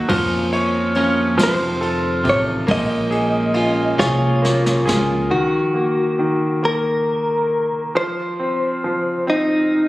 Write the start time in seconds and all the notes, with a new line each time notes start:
Already playing: F#3 D#4 F#4
0.09 F2 F3 A#3 C#4 F4, kick, ride
0.53 C#5, ride
0.95 F3 A#3 C#4 F4, ride
1.38 F2 C3 D#3 F3 A3 C4 F4, snare, ride
1.43 C5
1.81 A4, ride
2.24 A1 C3 D#3 A3 F4, kick, ride
2.29 C#5
2.67 A#1 A#2 F3 G#3 A#3 C#4 F4, kick, ride
2.71 D#5
3.11 G#4, ride
3.54 F3 G#3 C#4 F4, ride
3.98 C2 A#2 F3 G#3 C#4 F4 G#4 C#5, snare
4.42 A#3, snare
4.66 snare
4.85 C#2 G#3 C#4 F4 G#4, snare
5.30 D#3 F#4
5.74 A#3
6.19 D#3
6.63 A#3 A#4
7.95 F3 C5
8.40 C4
8.84 F3
9.27 C4 D#4